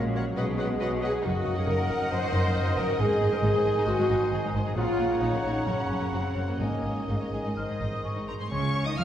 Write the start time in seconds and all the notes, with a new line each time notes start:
Already playing: A#1 A#2 F#3 G#3 C#4 F#4 C#5
0.06 F#5
0.15 F#3 F#4 A#4 C#5 F#5
0.28 C#4
0.36 B1 B2 F#3 G#3 B4 D#5 F#5
0.50 F#3
0.58 F#3 D#4 B4 D#5 F#5
0.72 F#4
0.80 B1 B2 F#3 B4 D#5 F#5
0.93 F#5
1.01 F#3 F#4 G#4 B4 D#5 F#5
1.14 D#4
1.23 F#1 F#2 D#3 D#4 F#4 A#4 D#5 F#5
1.36 A#3
1.45 F#1 F#2 D#4 F#4
1.55 F#2 G#4 A#4
1.66 F#1 F#2 D#4 A#4 D#5
1.77 F#2 A#4 F#5
1.88 F#1 F#2 F#4 A#4
1.99 F#2 D#4
2.11 F#1 F#2 A#4 C5
2.22 F#2 A#3 F#4
2.33 F#1 F#2 D#4
2.44 F#2 A#4
2.55 F#1 F#2 F#4 D#5
2.66 F#2 D#4 F#5
2.77 F#1 F#2 A#4
2.88 F#2 D#4 F#4
2.98 G#1 G#2 D#4 G#4 C5 D#5 G#5
3.10 C4
3.21 G#1 G#2 D#4 G#4
3.31 G#2 A#4 C5
3.42 G#1 G#2 D#4 G#4 D#5
3.53 G#2 C5
3.64 G#1 G#2 D#4 G#4
3.76 G#2 C4 D#4
3.86 G#1 G#2 D#3 F#4 C5
3.98 G#2 C4 G#4
4.08 G#1 G#2 D#4
4.21 G#2 C5
4.32 G#1 G#2 G#4 D#5
4.43 G#2 D#4 C5
4.54 G#1 G#2 D#4 C5
4.65 G#2 C4 G#4
4.75 A#1 A#2 C#3 C#4 F4 C#5 F#5 A#5
4.88 A#3
4.99 A#1 A#2 C#4 F#4
5.10 A#2 A#4
5.21 A#1 A#2 C#4 D#4 C#5
5.33 A#2 A#4 F#5
5.43 A#1 A#2 F#4 A#4
5.55 A#2 C#4
5.66 F#1 F#2 C#4 A#4
5.78 F#2 A#3 F#4
5.89 F#1 F#2 C#4
6.00 F#2 A#4
6.12 F#1 F#2 C4 F#4 C#5
6.24 F#2 C#4 F#5
6.35 F#1 F#2 A#4
6.47 F#2 A#3 C#4 F#4
6.59 G#1 G#2 D#3 A#3 D#4 D#5 G#5
6.72 G#3
6.83 G#1 G#2 C#4 G#4
6.96 G#2 G#4 C#5
7.08 G#1 G#2 G#3 D#4 C#5 F5
7.21 G#2 C#5 D#5
7.32 G#1 G#2 G#4 G#5
7.45 G#2 C#4 D#4
7.56 G#1 G#2 C5 D#5 F6
7.68 G#2 G#3 G#4
7.81 G#1 G#2 C4 D#4 D#6
7.92 G#2 G#4 C5
8.04 G#1 G#2 G#4 C5 C#6
8.16 G#2 D#4 D#5
8.27 G#1 G#2 G#4 A#4 C5 A#5 C6
8.39 G#2 C4 G#4 C5 C6
8.51 C#2 C#3 C#4 C#5 C#6
8.63 G#3
8.74 F4
8.85 D#3 D#4 C#5 D#5 D#6
8.96 F2 F3 F4 F5 F6